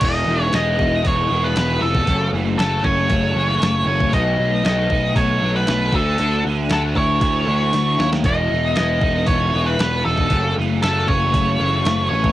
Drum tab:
CC |x---------------|----------------|----------------|----------------|
HH |o---o---o---o---|o---o---o---o---|o---o---o---o---|o---o---o---o---|
SD |----o-------o---|----o-------o---|----o-------o---|----o-------o-oo|
BD |o-----o-o------o|o-----o-o------o|o-----o-o-----o-|------o-o-------|

CC |----------------|----------------|
HH |o---o---o---o---|o---o---o---o---|
SD |----o-------o---|----o-------o---|
BD |o-----o-o------o|o-----o-o------o|